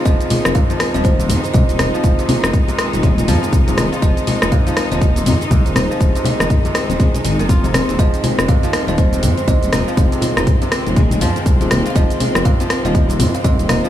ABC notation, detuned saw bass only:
X:1
M:4/4
L:1/16
Q:"Swing 16ths" 1/4=121
K:Fm
V:1 name="Detuned saw bass" clef=bass
F,,, z2 F,,, z3 E,,,3 F,, z C,, E,,, E,,, z | F,,, z2 F,,, z3 E,,,3 F,, z C,, E,,, E,,, z | F,,, z2 F,,, z3 E,,,3 F,, z C,, E,,, E,,, z | F,,, z2 F,,, z3 E,,, z2 A,,, F,,,4 E,,, |
F,,, z2 F,,, z3 E,,,3 F,, z C,, E,,, E,,, z | F,,, z2 F,,, z3 E,,,3 F,, z C,, E,,, E,,, z | F,,, z2 F,,, z3 E,,,3 F,, z C,, E,,, E,,, z |]